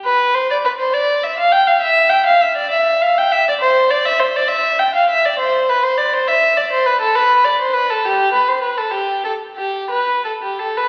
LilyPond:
\new Staff \with { instrumentName = "Violin" } { \time 12/8 \key c \major \tempo 4. = 67 b'8 c''16 d''16 b'16 c''16 d''8 e''16 f''16 g''16 f''16 e''8 g''16 f''16 e''16 d''16 e''8 f''16 g''16 e''16 d''16 | c''8 d''16 e''16 c''16 d''16 e''8 g''16 f''16 e''16 d''16 c''8 b'16 c''16 d''16 c''16 e''8 d''16 c''16 b'16 a'16 | b'8 d''16 c''16 b'16 a'16 g'8 b'16 c''16 b'16 a'16 g'8 a'8 g'8 b'8 a'16 g'16 a'16 b'16 | }